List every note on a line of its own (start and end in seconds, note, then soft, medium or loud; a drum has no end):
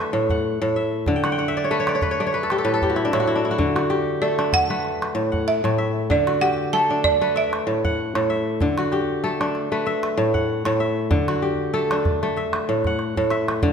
0.00 1.68 A3 medium
0.00 1.04 D4 medium
0.00 0.20 F#4 medium
0.00 0.29 G4 medium
0.00 0.51 A4 medium
0.00 0.91 B4 medium
0.00 0.76 E5 medium
0.13 0.60 A2 medium
0.30 1.22 F#5 medium
0.30 calabash thump soft
0.62 1.12 A2 medium
0.76 1.48 E5 medium
1.06 2.37 D3 medium
1.06 calabash thump medium
1.16 1.32 G5 medium
1.24 1.38 F#5 medium
1.24 calabash click soft
1.32 2.25 G5 medium
1.38 2.35 F#5 medium
1.38 calabash click soft
1.48 2.52 E5 medium
1.57 1.86 D5 medium
1.64 1.79 C#5 medium
1.71 2.20 A3 medium
1.71 2.02 B4 medium
1.80 1.95 C#5 medium
1.87 2.17 D5 medium
1.87 calabash click soft
1.95 2.11 C#5 medium
2.02 2.33 B4 medium
2.02 calabash thump medium
2.11 2.26 C#5 medium
2.20 4.20 A3 medium
2.20 3.31 D5 medium
2.27 3.11 C#5 medium
2.33 2.64 B4 medium
2.33 calabash click soft
2.43 2.58 A4 medium
2.50 2.82 G4 medium
2.50 calabash click soft
2.58 2.73 A4 medium
2.65 3.12 A2 medium
2.65 3.88 B4 medium
2.74 4.06 A4 medium
2.82 3.26 G4 medium
2.82 calabash thump soft
2.90 3.19 F#4 medium
2.96 3.13 E4 medium
2.96 calabash click soft
3.05 3.35 D4 medium
3.13 3.63 A2 medium
3.13 3.27 E4 medium
3.13 calabash click soft
3.20 3.50 F#4 medium
3.26 3.44 E4 medium
3.26 calabash click soft
3.36 4.38 D4 medium
3.45 5.02 E4 medium
3.45 calabash click soft
3.51 3.75 F#4 medium
3.58 4.89 D3 medium
3.58 calabash thump medium
3.76 5.22 F#4 medium
3.76 calabash click soft
3.90 5.31 G4 medium
3.90 calabash click soft
4.22 4.70 A3 medium
4.22 5.54 A4 medium
4.22 4.54 D5 medium
4.39 6.06 D4 medium
4.39 calabash click soft
4.53 5.50 F#5 loud
4.53 calabash thump soft
4.53 calabash click soft
4.70 6.70 A3 medium
4.70 5.93 B4 medium
4.70 calabash click soft
4.85 calabash click soft
5.02 calabash click soft
5.15 5.63 A2 medium
5.32 6.28 F#5 medium
5.32 calabash thump soft
5.48 6.12 E5 medium
5.64 6.14 A2 medium
5.64 calabash click soft
5.78 6.82 E5 medium
6.10 7.40 D3 medium
6.10 6.43 D5 medium
6.10 calabash thump medium
6.27 7.73 F#4 medium
6.27 calabash click soft
6.41 7.83 G4 medium
6.41 6.55 F#5 medium
6.41 calabash click soft
6.73 7.21 A3 medium
6.73 8.05 A4 medium
6.73 7.05 A5 medium
6.90 8.58 D4 medium
7.04 7.36 D5 loud
7.04 calabash thump medium
7.04 calabash click soft
7.21 9.21 A3 medium
7.21 8.45 B4 medium
7.21 calabash click soft
7.36 8.29 E5 medium
7.36 8.26 E5 medium
7.36 calabash click soft
7.53 calabash click soft
7.67 8.14 A2 medium
7.85 8.81 F#5 medium
7.85 calabash thump soft
8.15 8.65 A2 medium
8.15 calabash click soft
8.30 9.33 E5 medium
8.61 9.91 D3 medium
8.61 calabash thump medium
8.78 10.25 F#4 medium
8.78 calabash click soft
8.92 10.34 G4 medium
8.92 calabash click soft
9.24 9.71 A3 medium
9.24 10.55 A4 medium
9.41 11.09 D4 medium
9.41 calabash click soft
9.55 calabash click soft
9.72 11.71 A3 medium
9.72 10.95 B4 medium
9.72 calabash click soft
9.86 10.80 E5 medium
9.86 calabash click soft
10.03 calabash click soft
10.17 10.65 A2 medium
10.34 11.31 F#5 medium
10.34 calabash thump soft
10.65 11.16 A2 medium
10.65 calabash click medium
10.80 11.83 E5 medium
11.11 12.42 D3 medium
11.11 calabash thump medium
11.28 12.75 F#4 medium
11.28 calabash click soft
11.42 12.84 G4 medium
11.74 12.22 A3 medium
11.74 13.05 A4 medium
11.91 13.60 D4 medium
11.91 calabash click medium
12.05 calabash thump medium
12.23 13.73 A3 medium
12.23 calabash click soft
12.37 13.31 E5 medium
12.37 calabash click soft
12.53 calabash click medium
12.69 13.16 A2 medium
12.85 13.73 F#5 medium
12.85 calabash thump soft
12.85 calabash click soft
12.99 calabash click soft
13.17 13.67 A2 medium
13.17 calabash thump soft
13.30 13.73 E5 medium
13.30 calabash click soft
13.48 calabash click soft
13.63 13.73 D3 medium
13.63 calabash thump medium